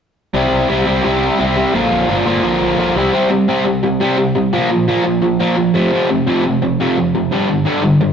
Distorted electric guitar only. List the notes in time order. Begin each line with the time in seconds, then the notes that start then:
0.34 C3 G3 C4 E4
0.69 C3 G3 C4 E4
0.86 C3 G3 C4 E4
1.04 C3 G3 C4 E4
1.39 C3 G3 C4 E4
1.57 C3 G3 C4 E4
1.74 A#2 D3 F3 A#3 F4
2.08 A#2 D3 F3 A#3 F4
2.26 A#2 D3 F3 A#3 F4
2.43 A#2 D3 F3 A#3 F4
2.79 A#2 D3 F3 A#3 F4
2.96 C3 G3 C4 E4
3.13 C3 G3 C4
3.30 C3 G3
3.48 C3 G3 C4
3.65 C3 G3
3.83 C3 G3
4.00 C3 G3 C4
4.17 C3 G3
4.35 C3 G3
4.53 A#2 F3 A#3
4.70 A#2 F3
4.88 A#2 F3 A#3
5.05 A#2 F3
5.22 A#2 F3
5.40 A#2 F3 A#3
5.57 A#2 F3
5.74 F2 C3 F3
5.92 F2 C3 F3
6.09 F2 C3
6.27 F2 C3 F3
6.44 F2 C3
6.62 F2 C3
6.80 F2 C3 F3
6.97 F2 C3
7.15 F2 C3
7.32 G2 D3 G3
7.49 G2 D3
7.65 G2 D3 G3
7.83 G2 D3
8.01 G2 D3